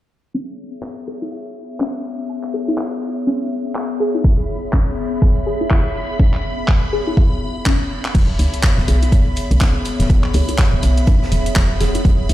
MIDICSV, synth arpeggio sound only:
0, 0, Header, 1, 2, 480
1, 0, Start_track
1, 0, Key_signature, 4, "major"
1, 0, Tempo, 487805
1, 338, Time_signature, 4, 2, 24, 8
1, 12138, End_track
2, 0, Start_track
2, 0, Title_t, "Synth arpeggio sound"
2, 0, Program_c, 0, 84
2, 337, Note_on_c, 0, 61, 81
2, 430, Note_off_c, 0, 61, 0
2, 816, Note_on_c, 0, 80, 85
2, 854, Note_off_c, 0, 80, 0
2, 1057, Note_on_c, 0, 68, 95
2, 1119, Note_off_c, 0, 68, 0
2, 1199, Note_on_c, 0, 64, 72
2, 1263, Note_off_c, 0, 64, 0
2, 1297, Note_on_c, 0, 76, 82
2, 1335, Note_off_c, 0, 76, 0
2, 1777, Note_on_c, 0, 61, 76
2, 1870, Note_off_c, 0, 61, 0
2, 2257, Note_on_c, 0, 80, 78
2, 2294, Note_off_c, 0, 80, 0
2, 2497, Note_on_c, 0, 68, 99
2, 2559, Note_off_c, 0, 68, 0
2, 2638, Note_on_c, 0, 64, 75
2, 2703, Note_off_c, 0, 64, 0
2, 2735, Note_on_c, 0, 76, 86
2, 2774, Note_off_c, 0, 76, 0
2, 3216, Note_on_c, 0, 61, 83
2, 3310, Note_off_c, 0, 61, 0
2, 3696, Note_on_c, 0, 80, 82
2, 3734, Note_off_c, 0, 80, 0
2, 3936, Note_on_c, 0, 68, 95
2, 3999, Note_off_c, 0, 68, 0
2, 4078, Note_on_c, 0, 64, 73
2, 4143, Note_off_c, 0, 64, 0
2, 4176, Note_on_c, 0, 76, 78
2, 4214, Note_off_c, 0, 76, 0
2, 4655, Note_on_c, 0, 61, 82
2, 4750, Note_off_c, 0, 61, 0
2, 5136, Note_on_c, 0, 80, 86
2, 5174, Note_off_c, 0, 80, 0
2, 5377, Note_on_c, 0, 68, 96
2, 5439, Note_off_c, 0, 68, 0
2, 5518, Note_on_c, 0, 64, 77
2, 5583, Note_off_c, 0, 64, 0
2, 5616, Note_on_c, 0, 76, 84
2, 5654, Note_off_c, 0, 76, 0
2, 6096, Note_on_c, 0, 61, 83
2, 6190, Note_off_c, 0, 61, 0
2, 6576, Note_on_c, 0, 80, 83
2, 6614, Note_off_c, 0, 80, 0
2, 6816, Note_on_c, 0, 68, 93
2, 6879, Note_off_c, 0, 68, 0
2, 6958, Note_on_c, 0, 64, 73
2, 7023, Note_off_c, 0, 64, 0
2, 7057, Note_on_c, 0, 76, 86
2, 7094, Note_off_c, 0, 76, 0
2, 7537, Note_on_c, 0, 61, 87
2, 7630, Note_off_c, 0, 61, 0
2, 8017, Note_on_c, 0, 61, 80
2, 8110, Note_off_c, 0, 61, 0
2, 8497, Note_on_c, 0, 80, 85
2, 8534, Note_off_c, 0, 80, 0
2, 8736, Note_on_c, 0, 68, 100
2, 8799, Note_off_c, 0, 68, 0
2, 8877, Note_on_c, 0, 64, 75
2, 8943, Note_off_c, 0, 64, 0
2, 8976, Note_on_c, 0, 76, 84
2, 9014, Note_off_c, 0, 76, 0
2, 9456, Note_on_c, 0, 61, 81
2, 9550, Note_off_c, 0, 61, 0
2, 9936, Note_on_c, 0, 80, 83
2, 9974, Note_off_c, 0, 80, 0
2, 10176, Note_on_c, 0, 68, 97
2, 10239, Note_off_c, 0, 68, 0
2, 10318, Note_on_c, 0, 64, 81
2, 10383, Note_off_c, 0, 64, 0
2, 10416, Note_on_c, 0, 76, 85
2, 10454, Note_off_c, 0, 76, 0
2, 10897, Note_on_c, 0, 61, 86
2, 10990, Note_off_c, 0, 61, 0
2, 11377, Note_on_c, 0, 80, 84
2, 11414, Note_off_c, 0, 80, 0
2, 11617, Note_on_c, 0, 68, 92
2, 11679, Note_off_c, 0, 68, 0
2, 11758, Note_on_c, 0, 64, 75
2, 11823, Note_off_c, 0, 64, 0
2, 11857, Note_on_c, 0, 76, 83
2, 11894, Note_off_c, 0, 76, 0
2, 12138, End_track
0, 0, End_of_file